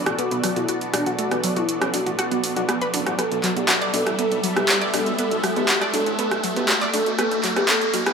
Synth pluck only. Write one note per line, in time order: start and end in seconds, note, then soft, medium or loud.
0.19 0.22 B3 medium
0.32 0.40 B3 medium
0.44 0.50 F#3 medium
0.57 0.65 F#4 medium
0.69 0.75 F#4 medium
0.94 0.97 D4 medium
1.07 1.10 F#4 medium
1.19 1.28 A3 medium
1.32 1.40 B3 medium
1.44 1.50 F#3 medium
1.57 1.65 F#4 medium
1.82 1.87 C#4 medium
1.94 1.97 D4 medium
2.06 2.10 F#4 medium
2.19 2.25 F#4 loud
2.32 2.40 B3 medium
2.57 2.65 F#4 medium
2.69 2.75 B3 medium
2.82 2.87 B4 loud
2.94 2.97 D4 medium
3.06 3.10 F#4 medium
3.19 3.22 B3 medium
3.44 3.50 F#3 medium
3.56 3.62 B3 medium
3.69 3.75 F#4 medium
3.81 3.90 D5 medium
3.94 4.00 D4 medium
4.19 4.22 B3 medium
4.44 4.50 F#3 medium
4.57 4.62 B3 medium
4.69 4.75 F#4 medium
4.82 4.90 D5 loud
4.94 5.00 D4 medium
5.19 5.22 B3 medium
5.44 5.50 F#3 medium
5.57 5.62 B3 medium
5.69 5.75 F#4 medium
5.81 5.90 D5 medium
5.94 6.00 D4 medium
6.19 6.22 B3 medium
6.44 6.50 F#3 medium
6.56 6.62 B3 medium
6.69 6.75 F#4 medium
6.81 6.90 D5 loud
6.94 7.00 D4 medium
7.19 7.22 B3 medium
7.44 7.50 F#3 medium
7.56 7.62 B3 medium
7.69 7.72 B3 medium
7.94 8.00 F#3 medium
8.07 8.12 B3 medium